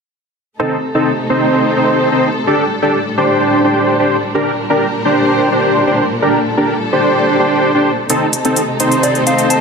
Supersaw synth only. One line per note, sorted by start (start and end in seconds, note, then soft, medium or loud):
0.60 0.76 C4 medium
0.60 0.76 D#4 medium
0.60 0.77 A4 loud
0.95 1.12 C4 medium
0.95 1.12 D#4 medium
0.95 1.12 A4 loud
1.30 1.74 C4 medium
1.30 1.74 D#4 medium
1.30 1.74 C5 loud
1.76 2.09 C4 medium
1.76 2.09 D#4 medium
1.76 2.09 C5 loud
2.12 2.29 C4 medium
2.12 2.29 D#4 medium
2.12 2.29 C5 medium
2.47 2.64 D4 medium
2.47 2.64 G4 medium
2.47 2.64 A4 loud
2.82 2.99 D4 medium
2.82 2.99 G4 medium
2.82 2.99 A4 loud
3.17 3.62 D4 medium
3.17 3.62 G4 medium
3.17 3.62 C5 loud
3.64 3.97 D4 medium
3.64 3.97 G4 medium
3.64 3.97 C5 loud
4.00 4.16 D4 medium
4.00 4.16 G4 medium
4.00 4.16 C5 loud
4.35 4.52 D4 medium
4.35 4.52 G4 medium
4.35 4.52 A#4 loud
4.70 4.87 D4 medium
4.70 4.87 G4 medium
4.70 4.87 A#4 medium
5.05 5.49 D4 medium
5.05 5.49 G4 medium
5.05 5.49 C5 loud
5.52 5.84 D4 medium
5.52 5.84 G4 medium
5.52 5.84 C5 loud
5.87 6.04 D4 medium
5.87 6.04 G4 medium
5.87 6.04 C5 medium
6.22 6.39 D4 medium
6.22 6.39 G4 medium
6.22 6.39 A#4 loud
6.57 6.74 D4 medium
6.57 6.74 G4 medium
6.57 6.74 A#4 medium
6.93 7.37 D4 medium
6.93 7.37 G4 medium
6.93 7.37 C5 loud
7.39 7.72 D4 medium
7.39 7.72 G4 medium
7.39 7.72 C5 loud
7.75 7.91 D4 medium
7.75 7.91 G4 medium
7.75 7.91 C5 medium
8.10 8.27 C4 medium
8.10 8.27 D#4 medium
8.10 8.27 A4 loud
8.45 8.62 C4 medium
8.45 8.62 D#4 medium
8.45 8.62 A4 medium
8.80 9.24 C4 medium
8.80 9.24 D#4 medium
8.80 9.24 C5 loud
9.27 9.59 C4 medium
9.27 9.59 D#4 medium
9.27 9.59 C5 loud